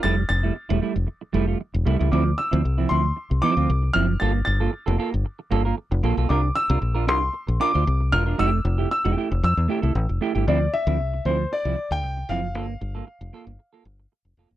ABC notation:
X:1
M:4/4
L:1/16
Q:1/4=115
K:Dm
V:1 name="Grand piano"
a'2 a'12 z2 | d'2 e'4 c'4 d'4 f'2 | a'2 a'12 z2 | d'2 e'4 c'4 d'4 f'2 |
e'4 e'4 e'6 z2 | d2 e4 c2 d3 g3 f2- | f12 z4 |]
V:2 name="Clean electric guitar"
[G,A,E] z2 [G,A,E] z [G,A,E] [G,A,E] z3 [G,A,E] [G,A,F] z2 [G,A,E] [G,A,E] | [F,CE] z2 [F,CE] z [F,CE] [F,CE] z3 [F,CE] [F,CF] z2 [F,CE] z | [B,FA] z2 [B,FA] z [B,FA] [B,FA] z3 [B,FA] [B,FB] z2 [B,FA] [B,FA] | [DFB] z2 [DFB] z [DFB] [DFB] z3 [DFB] [DFc] z2 [DFB] [DFB] |
[A,EG]2 z [A,EG] z [A,EG] [A,EG] z3 [A,EG] [A,EA] z2 [A,EG] [A,EG] | [F,CE] z2 [F,CE] z2 [F,CE] z2 [F,CE] z4 [F,CE] z | [B,FA] z2 [B,FA] z2 [B,FA] z2 [B,FA] z4 [B,FA] z |]
V:3 name="Fingered electric bass" clef=bass
F,,,2 F,,,2 z E,,, z F,,, z2 F,,,2 z E,,, C,, ^C,, | D,,2 z D,, C,,2 D,,2 z C,, z D,, C,,2 ^F,,,2 | G,,,2 G,,,2 z F,,, z G,,, z2 G,,,2 z F,,, B,,, =B,,, | C,,2 z C,, B,,,2 C,,2 z B,,, z D,, C,,2 E,,,2 |
F,,,2 F,,,2 z E,,, z F,,, F,, E,, z C,, A,,, F,,, z G,,, | D,,2 z D,, C,,2 D,,2 z C,, z D,, C,,2 ^F,,,2 | G,,,2 G,,,2 z F,,, z G,,, z2 G,,,2 z F,,, F,,, ^F,,, |]